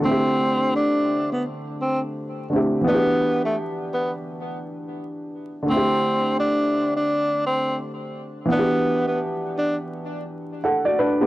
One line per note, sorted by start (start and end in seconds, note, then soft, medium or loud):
0.00 2.44 D3 medium
0.00 2.46 A3 medium
0.05 0.71 C4 medium
0.05 2.47 C4 medium
0.05 2.49 E4 medium
0.12 2.50 G4 medium
0.76 1.28 D4 medium
1.32 1.44 B3 medium
1.82 2.00 C4 medium
2.50 2.85 D3 medium
2.50 2.86 A3 soft
2.50 2.87 C4 soft
2.54 2.88 E4 soft
2.54 2.89 G4 medium
2.81 5.62 E3 medium
2.81 5.63 B3 medium
2.88 3.40 B3 loud
2.88 5.65 D4 medium
2.88 5.67 F#4 medium
2.95 5.69 G4 medium
3.45 3.56 A3 medium
3.94 4.12 B3 medium
5.63 8.44 D3 medium
5.63 8.46 A3 medium
5.70 8.47 C4 medium
5.70 6.36 C4 medium
5.70 8.49 E4 medium
5.77 8.51 G4 medium
6.39 6.92 D4 medium
6.96 7.48 D4 medium
7.46 7.77 C4 medium
8.45 11.26 E3 medium
8.45 10.57 B3 medium
8.51 9.04 B3 loud
8.51 10.59 D4 medium
8.56 10.61 F#4 medium
8.56 10.63 G4 medium
9.08 9.20 B3 medium
9.58 9.77 D4 medium
10.64 10.84 A4 medium
10.64 10.83 F#5 medium
10.85 10.98 F#4 medium
10.85 10.98 D5 medium
10.99 11.19 D4 medium
10.99 11.18 B4 medium
11.21 11.27 B3 medium
11.21 11.27 G4 medium